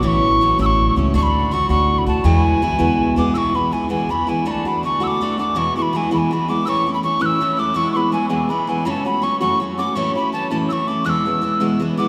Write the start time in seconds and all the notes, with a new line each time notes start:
0.02 A1 A2 E3 A3 C#4 E4
0.07 C#6
0.41 E3 A3 C#4 E4
0.59 A1 A2 E3 A3 C#4 E4 E6
0.66 C#6
0.96 C#2 A3 C#4 E4
1.14 D2 D3 A3 D4 F#4 C#6
1.23 B5
1.51 D3 A3 D4 F#4 C#6
1.69 D2 D3 A3 D4 F#4 C#6
1.98 B5
2.06 D2 A3 D4 F#4 A5
2.24 E2 B2 E3 G#3 B3 E4 G#5
2.62 E3 G#3 B3 E4
2.79 E2 B2 E3 G#3 B3 E4
3.16 E2 E3 G#3 B3 E4 D6
3.34 E2 B2 E3 G#3 B3 E4 C#6 E6
3.54 E3 G#3 B3 E4 B5
3.72 E3 G#3 B3 E4 G#5
3.89 E2 B2 E3 G#3 B3 E4 G#5
4.09 E3 G#3 B3 E4 B5
4.27 E3 G#3 B3 E4 G#5
4.45 D3 A3 D4 F#4 B5
4.51 A5
4.65 A3 D4 F#4 B5
4.83 D3 A3 D4 F#4 C#6
5.00 D3 A3 D4 F#4 E6
5.07 D6
5.21 D3 A3 D4 F#4
5.38 A3 D4 F#4 D6
5.55 E2 B2 E3 G#3 B3 E4 C#6
5.76 E3 G#3 B3 E4 C#6
5.82 B5
5.93 E3 G#3 B3 E4 G#5
6.11 E2 B2 E3 G#3 B3 E4 B5
6.18 G#5
6.31 E3 G#3 B3 E4 B5
6.48 E3 G#3 B3 E4 D6
6.65 A2 E3 A3 C#4 E4 C#6 E6
6.86 A3 C#4 E4
6.94 B5
7.03 E3 A3 C#4 E4 C#6
7.19 A2 E3 A3 C#4 E4 F#6
7.26 E6
7.41 E3 A3 C#4 E4
7.57 A3 C#4 E4 D6
7.74 E2 B2 E3 G#3 B3 E4 C#6
7.92 B3 E4 C#6
7.96 E3 G#3 B5
8.12 E3 G#3 B3 E4 G#5
8.29 E2 B2 E3 G#3 B3 E4 G#5
8.49 E3 G#3 B3 E4 B5
8.67 E3 G#3 B3 E4 G#5
8.85 F#2 C#3 F#3 A3 C#4 F#4 B5
8.90 A5
9.05 F#3 A3 C#4 F#4 B5
9.22 F#3 A3 C#4 F#4 C#6
9.40 F#2 C#3 F#3 A3 C#4 F#4 C#6
9.60 F#3 A3 C#4 F#4
9.78 F#3 A3 C#4 F#4 D6
9.95 A2 E3 A3 C#4 E4 C#6
10.15 A3 C#4 E4 B5
10.33 E3 A3 C#4 E4 A5
10.50 A2 E3 A3 C#4 E4 A5
10.69 E3 A3 C#4 E4 C#6 E6
10.87 A3 C#4 E4 D6
11.05 E2 B2 E3 G#3 B3 E4 F#6
11.09 E6
11.25 E3 G#3 B3 E4
11.42 E3 G#3 B3 E4
11.60 E2 B2 E3 G#3 B3 E4
11.80 E3 G#3 B3 E4
11.97 E3 G#3 B3 E4 D6